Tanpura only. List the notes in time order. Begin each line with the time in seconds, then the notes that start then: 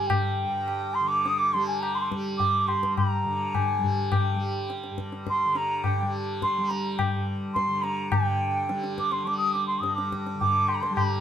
Already playing: G2 D3 G3
0.44 G2
1.00 D3
1.54 G3
2.11 G3
2.67 G2
3.24 D3
3.79 G3
4.34 G3
4.90 G2
5.45 D3
6.01 G3
6.58 G3
7.14 G2
7.67 D3
8.14 D3
8.69 G3
9.24 G3
9.80 G2
10.35 D3
10.90 G3